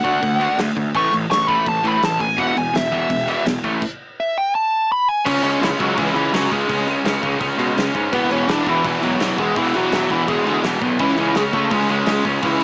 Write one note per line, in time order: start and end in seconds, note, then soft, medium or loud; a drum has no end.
0.00 0.21 D3 loud
0.00 0.21 A3 loud
0.00 0.58 F#5 loud
0.05 0.16 D2 medium
0.05 0.21 D4 loud
0.05 kick medium
0.05 crash medium
0.22 0.46 D2 loud
0.22 0.38 D3 medium
0.22 0.38 A3 medium
0.22 kick loud
0.22 crash medium
0.40 0.57 D3 loud
0.40 0.57 A3 loud
0.40 0.57 D4 loud
0.40 crash medium
0.58 0.70 D2 medium
0.58 0.74 D3 medium
0.58 0.75 A3 medium
0.58 snare loud
0.58 crash loud
0.76 0.88 D2 medium
0.76 0.92 D3 medium
0.76 0.93 A3 medium
0.76 kick medium
0.76 crash medium
0.95 1.06 A1 loud
0.95 1.11 A2 medium
0.95 1.12 E3 loud
0.95 1.12 A3 medium
0.95 1.13 C#6 loud
0.95 kick loud
0.95 crash medium
1.12 1.24 A1 medium
1.12 1.28 A2 medium
1.12 1.29 E3 medium
1.12 crash medium
1.30 1.54 A1 medium
1.30 1.46 A2 medium
1.30 1.46 E3 medium
1.30 1.48 C#6 loud
1.30 snare loud
1.30 crash medium
1.48 1.65 A2 medium
1.48 1.65 E3 loud
1.48 1.65 A3 loud
1.48 1.66 B5 loud
1.48 kick medium
1.48 crash medium
1.66 1.79 A1 loud
1.66 1.82 A2 medium
1.66 1.82 E3 medium
1.66 1.87 A5 medium
1.66 kick loud
1.66 crash medium
1.84 1.96 A1 medium
1.84 2.01 A2 loud
1.84 2.01 E3 loud
1.84 2.01 A3 loud
1.84 2.05 B5 loud
1.84 crash medium
2.02 2.26 A1 loud
2.02 2.18 A2 medium
2.02 2.18 E3 loud
2.02 2.21 A5 medium
2.02 snare loud
2.02 crash medium
2.20 2.36 A2 medium
2.20 2.36 E3 medium
2.20 2.39 G#5 medium
2.20 kick medium
2.20 crash medium
2.37 2.50 E1 loud
2.37 2.55 E2 medium
2.37 2.54 B2 loud
2.37 2.55 E3 loud
2.37 2.56 F#5 medium
2.37 kick loud
2.37 crash medium
2.56 2.68 E1 medium
2.56 2.72 E2 medium
2.56 2.72 B2 medium
2.56 2.75 G#5 loud
2.56 crash medium
2.74 2.86 E1 loud
2.74 2.90 E2 medium
2.74 2.90 B2 medium
2.74 3.45 E5 loud
2.74 snare loud
2.74 crash medium
2.91 3.04 E1 medium
2.91 3.09 E2 medium
2.91 3.09 B2 loud
2.91 3.09 E3 loud
2.91 kick medium
2.91 crash medium
3.10 3.34 E1 medium
3.10 3.26 E2 medium
3.10 3.26 B2 medium
3.10 kick loud
3.10 crash medium
3.28 3.45 E2 loud
3.28 3.45 B2 loud
3.28 3.45 E3 loud
3.28 crash medium
3.46 3.58 E1 loud
3.46 3.62 E2 medium
3.46 3.62 B2 medium
3.46 snare loud
3.46 crash medium
3.64 3.76 A1 medium
3.64 3.81 A2 medium
3.64 3.81 E3 medium
3.64 3.81 A3 medium
3.64 kick medium
3.64 crash medium
3.82 kick loud
3.82 crash loud
4.20 4.36 E5 loud
4.38 4.54 G5 loud
4.55 4.89 A5 medium
4.92 5.08 B5 medium
5.08 5.25 G#5 loud
5.25 5.38 C#2 loud
5.25 5.43 C#3 loud
5.25 5.43 G#3 loud
5.25 5.59 C#4 medium
5.25 5.44 C#4 loud
5.25 5.59 C#5 medium
5.25 kick loud
5.25 crash loud
5.25 crash medium
5.43 5.55 C#2 medium
5.43 5.61 C#3 loud
5.43 5.61 G#3 loud
5.43 5.62 C#4 loud
5.43 crash medium
5.61 5.74 C#2 medium
5.61 5.79 C#3 medium
5.61 5.67 E3 medium
5.61 5.79 G#3 loud
5.61 5.79 C#4 loud
5.61 5.67 E4 medium
5.61 snare loud
5.61 crash loud
5.79 5.92 C#2 medium
5.79 5.96 C#3 medium
5.79 5.96 F#3 medium
5.79 5.97 G#3 medium
5.79 5.97 C#4 medium
5.79 5.99 F#4 loud
5.79 kick loud
5.79 crash medium
5.97 6.10 C#2 medium
5.97 6.14 C#3 loud
5.97 6.14 E3 medium
5.97 6.15 G#3 loud
5.97 6.15 C#4 loud
5.97 6.14 E4 medium
5.97 kick loud
5.97 crash medium
6.15 6.27 C#2 loud
6.15 6.32 C#3 medium
6.15 6.32 E3 medium
6.15 6.33 G#3 medium
6.15 6.33 C#4 loud
6.15 6.33 E4 medium
6.15 crash medium
6.33 6.45 C#2 loud
6.33 6.50 C#3 medium
6.33 6.50 F#3 medium
6.33 6.51 G#3 medium
6.33 6.51 C#4 medium
6.33 6.52 F#4 medium
6.33 snare loud
6.33 crash loud
6.51 6.64 C#2 medium
6.51 6.67 C#3 medium
6.51 6.68 G#3 medium
6.51 6.85 G#3 medium
6.51 6.68 C#4 medium
6.51 6.85 G#4 medium
6.51 kick medium
6.51 crash medium
6.68 6.94 C#2 loud
6.68 6.86 C#3 loud
6.68 6.87 G#3 loud
6.68 6.87 C#4 loud
6.68 kick loud
6.68 crash loud
6.87 7.04 C#3 medium
6.87 7.05 G#3 loud
6.87 7.05 C#4 loud
6.87 crash medium
7.04 7.17 C#2 medium
7.04 7.21 C#3 medium
7.04 7.22 G#3 loud
7.04 7.22 C#4 medium
7.04 snare loud
7.04 crash medium
7.22 7.35 C#2 medium
7.22 7.39 C#3 medium
7.22 7.40 G#3 loud
7.22 7.40 C#4 loud
7.22 kick medium
7.22 crash medium
7.40 7.53 C#2 loud
7.40 7.57 C#3 loud
7.40 7.58 G#3 loud
7.40 7.58 C#4 loud
7.40 kick loud
7.40 crash medium
7.58 7.71 B2 loud
7.58 7.75 C#3 loud
7.58 7.76 G#3 medium
7.58 7.76 C#4 loud
7.58 crash medium
7.76 7.89 C#2 medium
7.76 7.92 C#3 medium
7.76 7.94 G#3 medium
7.76 7.94 C#4 medium
7.76 snare loud
7.76 crash medium
7.93 8.07 G#2 medium
7.93 8.11 C#3 medium
7.93 8.12 G#3 medium
7.93 8.11 C#4 medium
7.93 kick medium
7.93 crash medium
8.12 8.25 E1 loud
8.12 8.30 E2 loud
8.12 8.29 B2 medium
8.12 8.30 E3 loud
8.12 8.30 B3 medium
8.12 8.29 B4 medium
8.12 kick loud
8.12 crash medium
8.30 8.43 E1 medium
8.30 8.48 E2 loud
8.30 8.48 B2 medium
8.30 8.49 E3 loud
8.30 8.50 C#4 medium
8.30 8.47 C#5 medium
8.30 crash medium
8.48 8.60 E1 loud
8.48 8.66 E2 medium
8.48 8.65 B2 medium
8.48 8.66 E3 loud
8.48 8.69 D4 medium
8.48 8.65 D5 medium
8.48 snare loud
8.48 crash medium
8.66 8.79 E1 loud
8.66 8.83 E2 medium
8.66 8.83 B2 medium
8.66 8.84 E3 loud
8.66 8.84 E3 medium
8.66 8.85 E4 loud
8.66 kick medium
8.66 crash medium
8.84 8.97 E1 loud
8.84 9.01 E2 loud
8.84 9.01 B2 loud
8.84 9.02 E3 loud
8.84 9.02 E3 medium
8.84 9.04 E4 medium
8.84 kick loud
8.84 crash medium
9.02 9.14 E1 medium
9.02 9.19 E2 loud
9.02 9.19 B2 loud
9.02 9.21 E3 loud
9.02 9.36 F#3 medium
9.02 9.40 F#4 loud
9.02 crash medium
9.20 9.32 E1 medium
9.20 9.37 E2 medium
9.20 9.37 B2 medium
9.20 9.38 E3 loud
9.20 snare loud
9.20 crash loud
9.38 9.50 E1 medium
9.38 9.55 E2 medium
9.38 9.55 B2 medium
9.38 9.57 E3 medium
9.38 9.55 G#3 medium
9.38 9.57 G#4 medium
9.38 kick medium
9.38 crash medium
9.56 9.81 E1 loud
9.56 9.74 E2 loud
9.56 9.74 B2 medium
9.56 9.76 E3 loud
9.56 9.73 E3 medium
9.56 9.75 E4 medium
9.56 kick loud
9.56 crash medium
9.74 9.91 E2 medium
9.74 9.92 B2 loud
9.74 9.93 E3 loud
9.74 10.09 F#3 medium
9.74 10.12 F#4 loud
9.74 crash medium
9.92 10.04 E1 loud
9.92 10.09 E2 medium
9.92 10.09 B2 medium
9.92 10.11 E3 loud
9.92 snare loud
9.92 crash loud
10.10 10.22 E1 medium
10.10 10.27 E2 loud
10.10 10.27 B2 loud
10.10 10.28 E3 medium
10.10 10.27 E3 medium
10.10 10.29 E4 loud
10.10 kick medium
10.10 crash medium
10.27 10.40 E1 loud
10.27 10.45 E2 loud
10.27 10.45 B2 loud
10.27 10.47 E3 loud
10.27 10.61 G#3 medium
10.27 10.61 G#4 medium
10.27 kick loud
10.27 crash medium
10.45 10.57 D2 medium
10.45 10.63 E2 loud
10.45 10.63 B2 loud
10.45 10.64 E3 loud
10.45 crash medium
10.64 10.76 E1 loud
10.64 10.81 E2 medium
10.64 10.81 B2 medium
10.64 10.82 E3 loud
10.64 snare loud
10.64 crash medium
10.81 10.99 B1 medium
10.81 10.99 E2 medium
10.81 10.99 B2 medium
10.81 11.00 E3 medium
10.81 kick medium
10.81 crash medium
10.99 11.12 C#2 loud
10.99 11.17 C#3 loud
10.99 11.33 E3 medium
10.99 11.18 G#3 loud
10.99 11.18 C#4 loud
10.99 11.37 E4 medium
10.99 kick loud
10.99 crash medium
11.17 11.30 C#2 medium
11.17 11.36 C#3 medium
11.17 11.36 G#3 loud
11.17 11.37 C#4 loud
11.17 crash medium
11.35 11.48 C#2 medium
11.35 11.53 C#3 medium
11.35 11.41 G#3 medium
11.35 11.53 G#3 medium
11.35 11.54 C#4 loud
11.35 11.41 G#4 loud
11.35 snare loud
11.35 crash medium
11.53 11.65 C#2 medium
11.53 11.71 C#3 medium
11.53 11.72 G#3 loud
11.53 11.70 A3 medium
11.53 11.72 C#4 medium
11.53 11.71 A4 loud
11.53 kick medium
11.53 crash medium
11.71 11.84 C#2 loud
11.71 11.88 C#3 medium
11.71 11.88 G#3 loud
11.71 11.89 G#3 loud
11.71 11.89 C#4 loud
11.71 11.90 G#4 medium
11.71 kick loud
11.71 crash medium
11.89 12.02 C#2 loud
11.89 12.06 C#3 medium
11.89 12.07 G#3 loud
11.89 12.24 G#3 medium
11.89 12.07 C#4 loud
11.89 12.24 G#4 loud
11.89 crash medium
12.06 12.20 C#2 medium
12.06 12.23 C#3 medium
12.06 12.25 G#3 medium
12.06 12.24 C#4 medium
12.06 snare loud
12.06 crash loud
12.25 12.38 C#2 medium
12.25 12.41 C#3 medium
12.25 12.42 G#3 medium
12.25 12.42 C#4 loud
12.25 kick medium
12.25 crash medium
12.42 12.64 C#2 loud
12.42 12.60 C#3 medium
12.42 12.64 E3 medium
12.42 12.61 G#3 loud
12.42 12.60 C#4 loud
12.42 12.64 E4 medium
12.42 kick loud
12.42 crash loud
12.60 crash medium